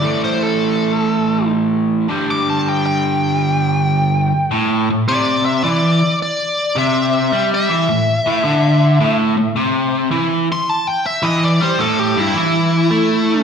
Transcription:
Already playing: lead electric guitar D5
0.02 overdriven electric guitar A2 E3 A3
0.24 lead electric guitar C5
0.43 lead electric guitar A4
2.09 overdriven electric guitar G2 D3 G3
2.31 lead electric guitar D6
2.50 lead electric guitar A5
2.68 lead electric guitar G5
2.86 lead electric guitar G5
4.51 overdriven electric guitar A2
4.90 overdriven electric guitar A2
5.08 overdriven electric guitar C3, lead electric guitar D5
5.46 lead electric guitar E5
5.64 overdriven electric guitar E3, lead electric guitar D5
6.22 lead electric guitar D5
6.77 overdriven electric guitar C3, lead electric guitar E5
7.32 overdriven electric guitar G3
7.54 lead electric guitar E5
7.70 overdriven electric guitar E3
7.89 overdriven electric guitar A2
8.27 overdriven electric guitar A2
8.44 overdriven electric guitar D3
9.00 overdriven electric guitar A2
9.37 overdriven electric guitar A2
9.56 overdriven electric guitar C3
10.11 overdriven electric guitar E3
10.52 lead electric guitar C6
10.69 lead electric guitar A5
10.87 lead electric guitar G5
11.06 lead electric guitar E5
11.23 overdriven electric guitar E3, lead electric guitar D#5
11.44 lead electric guitar D5
11.61 overdriven electric guitar G3, lead electric guitar C5
11.78 overdriven electric guitar A2, lead electric guitar A4
12.00 lead electric guitar G4
12.16 overdriven electric guitar G2, lead electric guitar E4
12.34 overdriven electric guitar E3, lead electric guitar E4
12.91 overdriven electric guitar A3

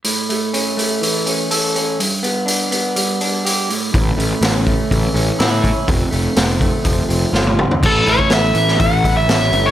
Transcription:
0.04 clean electric guitar A2, open hi-hat
0.29 clean electric guitar A3, open hi-hat
0.53 clean electric guitar C#4, open hi-hat
0.77 clean electric guitar A3, open hi-hat
1.01 clean electric guitar E3, open hi-hat
1.26 clean electric guitar C#4, open hi-hat
1.51 clean electric guitar A4, open hi-hat
1.75 clean electric guitar C#4, open hi-hat
1.99 clean electric guitar G2, open hi-hat
2.23 clean electric guitar B3, open hi-hat
2.46 clean electric guitar D4, open hi-hat
2.71 clean electric guitar B3, open hi-hat
2.96 clean electric guitar G3, open hi-hat
3.21 clean electric guitar D4, open hi-hat
3.45 clean electric guitar G4, open hi-hat
3.69 clean electric guitar A2, open hi-hat
3.93 picked electric bass A1, clean electric guitar A2, kick, open hi-hat
4.17 picked electric bass A1, clean electric guitar A3, open hi-hat
4.41 picked electric bass A1, clean electric guitar C#4, snare, open hi-hat
4.66 clean electric guitar A3, kick, open hi-hat
4.91 picked electric bass A1, clean electric guitar E3, kick, open hi-hat
5.14 picked electric bass A1, clean electric guitar C#4, open hi-hat
5.39 picked electric bass A2, clean electric guitar E4, snare, open hi-hat
5.63 clean electric guitar C#4, kick, open hi-hat
5.87 picked electric bass F1, clean electric guitar F2, kick, open hi-hat
6.11 picked electric bass F1, clean electric guitar A3, open hi-hat
6.36 picked electric bass F1, clean electric guitar C4, snare, open hi-hat
6.61 clean electric guitar A3, kick, open hi-hat
6.84 picked electric bass F1, clean electric guitar F3, kick, open hi-hat
7.09 picked electric bass F1, clean electric guitar C4, open hi-hat
7.33 picked electric bass G1, clean electric guitar F4, snare
7.47 high tom
7.58 clean electric guitar C4, mid tom
7.71 floor tom
7.83 picked electric bass A1, clean electric guitar A2, lead electric guitar A4, kick, crash
8.06 picked electric bass A1, clean electric guitar E4, lead electric guitar C#5, open hi-hat
8.19 kick
8.30 picked electric bass A1, clean electric guitar A3, lead electric guitar E5, snare, open hi-hat
8.55 picked electric bass A1, clean electric guitar E3, open hi-hat
8.68 snare
8.79 picked electric bass A1, clean electric guitar A3, lead electric guitar F#5, kick, open hi-hat
9.03 picked electric bass A1, clean electric guitar E4, kick, open hi-hat
9.17 lead electric guitar E5
9.28 picked electric bass A1, clean electric guitar C#4, snare, open hi-hat
9.52 picked electric bass G1, clean electric guitar A3, open hi-hat
9.66 lead electric guitar D5

